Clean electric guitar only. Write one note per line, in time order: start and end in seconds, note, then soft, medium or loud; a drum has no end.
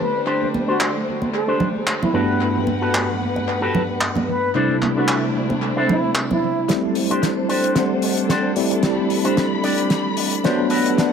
0.00 muted clean electric guitar stroke soft
0.26 0.47 D4 medium
0.26 0.47 G4 medium
0.26 0.47 C5 loud
0.68 0.95 D4 medium
0.68 0.95 G4 medium
0.68 0.95 C5 medium
1.21 muted clean electric guitar stroke medium
1.33 muted clean electric guitar stroke soft
1.48 1.68 D4 medium
1.48 1.68 G4 medium
1.48 1.68 C5 loud
1.87 muted clean electric guitar stroke medium
2.01 muted clean electric guitar stroke soft
2.14 2.67 F#4 medium
2.14 2.68 G4 medium
2.14 2.68 A4 medium
2.14 2.68 B4 medium
2.81 3.09 F#4 medium
2.81 3.09 G4 medium
2.81 3.09 A4 medium
2.81 3.09 B4 medium
3.35 muted clean electric guitar stroke medium
3.47 muted clean electric guitar stroke soft
3.62 3.82 F#4 loud
3.62 3.82 G4 medium
3.62 3.82 A4 medium
3.62 3.82 B4 loud
4.01 muted clean electric guitar stroke medium
4.16 muted clean electric guitar stroke soft
4.28 muted clean electric guitar stroke soft
4.55 4.76 D4 loud
4.55 4.76 E4 medium
4.55 4.76 A4 medium
4.55 4.76 C5 loud
4.96 5.23 D4 medium
4.96 5.24 E4 medium
4.96 5.24 A4 medium
4.96 5.24 B4 medium
5.50 muted clean electric guitar stroke medium
5.62 muted clean electric guitar stroke soft
5.76 5.96 D4 medium
5.76 5.96 E4 medium
5.76 5.96 A4 medium
5.76 5.96 C5 loud
6.16 muted clean electric guitar stroke medium
6.30 muted clean electric guitar stroke soft
6.42 muted clean electric guitar stroke soft
6.69 muted clean electric guitar stroke medium
6.83 muted clean electric guitar stroke soft
7.10 7.30 D4 medium
7.10 7.30 G4 medium
7.10 7.30 C5 medium
7.49 7.91 D4 medium
7.49 7.91 G4 medium
7.49 7.91 C5 medium
8.30 8.51 D4 medium
8.30 8.51 G4 medium
8.30 8.51 C5 medium
8.71 muted clean electric guitar stroke loud
8.83 muted clean electric guitar stroke loud
8.98 muted clean electric guitar stroke soft
9.24 9.44 D4 medium
9.24 9.44 G4 medium
9.24 9.44 C5 loud
9.63 10.05 D4 medium
9.63 10.05 G4 medium
9.63 10.05 D5 loud
10.44 10.65 D4 medium
10.44 10.65 G4 medium
10.44 10.65 C5 loud
10.70 11.04 F#4 medium
10.70 11.04 G4 medium
10.70 11.04 A4 medium
10.70 11.04 B4 loud